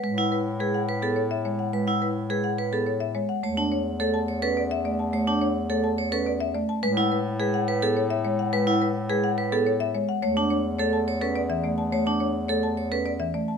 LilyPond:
<<
  \new Staff \with { instrumentName = "Marimba" } { \time 3/4 \key a \major \tempo 4 = 106 r16 fis''16 b'16 r16 b'16 fis''16 r16 gis'16 cis''16 e''16 cis''16 fis''16 | r16 fis''16 b'16 r16 b'16 fis''16 r16 gis'16 cis''16 e''16 cis''16 fis''16 | r16 a''16 cis''16 r16 cis''16 a''16 r16 a'16 d''16 e''16 d''16 a''16 | r16 a''16 cis''16 r16 cis''16 a''16 r16 a'16 d''16 e''16 d''16 a''16 |
b'16 fis''16 b'16 r16 b'16 fis''16 r16 gis'16 cis''16 e''16 cis''16 fis''16 | b'16 fis''16 b'16 r16 b'16 fis''16 r16 gis'16 cis''16 e''16 cis''16 fis''16 | cis''16 a''16 cis''16 r16 cis''16 a''16 r16 a'16 d''16 e''16 d''16 a''16 | cis''16 a''16 cis''16 r16 cis''16 a''16 r16 a'16 d''16 e''16 d''16 a''16 | }
  \new Staff \with { instrumentName = "Vibraphone" } { \time 3/4 \key a \major b'16 e'16 r8 gis'16 r16 b'16 a'16 r4 | b'16 e'16 r8 gis'16 r16 b'16 a'16 r4 | cis''16 d'16 r8 a'16 r16 cis''16 b'16 r4 | cis''16 d'16 r8 a'16 r16 cis''16 b'16 r4 |
b'16 e'16 r8 gis'16 r16 b'16 a'16 r4 | b'16 e'16 r8 gis'16 r16 b'16 a'16 r4 | cis''16 d'16 r8 a'16 r16 cis''16 b'16 r4 | cis''16 d'16 r8 a'16 r16 cis''16 b'16 r4 | }
  \new Staff \with { instrumentName = "Marimba" } { \time 3/4 \key a \major gis16 r8. gis16 r8 b16 r8 gis16 r16 | gis16 r8. gis16 r8 b16 r8 gis16 r16 | a16 r8. a16 r8 cis'16 r8 a16 r16 | a16 r8. a16 r8 cis'16 r8 a16 r16 |
gis16 r8. gis16 r8 b16 r8 gis16 r16 | gis16 r8. gis16 r8 b16 r8 gis16 r16 | a16 r8. a16 r8 cis'16 r16 e16 a16 r16 | a16 r8. a16 r8 cis'16 r16 e16 a16 r16 | }
  \new Staff \with { instrumentName = "Bass clarinet" } { \clef bass \time 3/4 \key a \major a,2.~ | a,2. | e,2.~ | e,2. |
a,2.~ | a,2. | e,2.~ | e,2. | }
>>